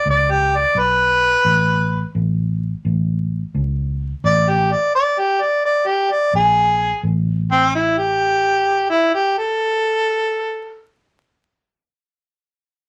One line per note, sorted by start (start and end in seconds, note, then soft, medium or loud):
0.06 0.63 C#2 medium
0.10 0.32 D5 medium
0.31 0.58 G4 medium
0.56 0.81 D5 medium
0.75 1.33 B1 medium
0.79 2.13 B4 loud
1.45 2.03 A1 loud
2.15 2.72 A1 medium
2.85 3.42 A1 medium
3.55 4.12 C#2 medium
4.24 4.74 A1 medium
4.24 4.51 D5 loud
4.50 4.73 G4 medium
4.72 4.94 D5 medium
4.95 5.20 D5 medium
5.19 5.43 G4 medium
5.42 5.64 D5 medium
5.65 5.89 D5 medium
5.87 6.13 G4 medium
6.12 6.34 D5 medium
6.33 6.91 A#1 medium
6.33 7.02 G#4 loud
7.03 10.76 A1 medium
7.52 7.73 C4 loud
7.75 7.99 E4 medium
7.98 8.87 G4 loud
8.90 9.12 E4 medium
9.14 9.36 G4 medium
9.38 10.83 A4 loud